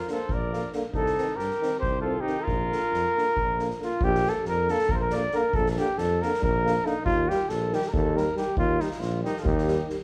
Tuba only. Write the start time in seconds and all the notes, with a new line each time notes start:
0.29 A#1
0.93 C2
1.38 G2
1.82 C2
2.47 A#1
2.92 F2
3.36 A#1
4.01 A#1
4.46 F2
4.91 A#1
5.54 A#1
5.98 F2
6.42 A#1
7.05 D#2
7.50 A#1
7.93 D#2
8.57 D#2
9.00 A#1
9.44 D#2